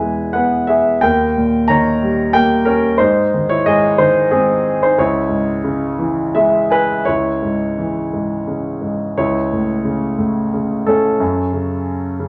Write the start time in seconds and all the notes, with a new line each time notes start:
Already playing: E2 B2 E3 G#4 B4 E5 G#5
0.00 G#3
0.33 B3 B4 F#5
0.67 G#4 E5
1.01 D#2 A#4 G5
1.36 A#2
1.68 D#3 C#5 A#5
2.03 G3
2.33 A#3 A#4 G5
2.65 C#4 A#4
2.98 G#2 D#4 C5
3.34 D#3
3.49 E4 C#5
3.66 G#2 G#4 D#5
3.98 D#3 D#4 C5
4.31 G#2 C4 G#4
4.83 D#4 C5
4.98 C#2 E4 C#5
5.29 G#2
5.64 C#3
5.99 E3
6.35 G#3 E5
6.70 B4 G#5
7.05 C#2 E4 C#5
7.43 G#2
7.78 E3
8.14 G#2
8.48 C#3
8.82 G#2
9.17 C#2 E4 C#5
9.53 A2
9.85 C#3
10.18 A2
10.54 C#3
10.86 A2 C#4 A4
11.20 F#2
11.53 C#3
12.20 C#3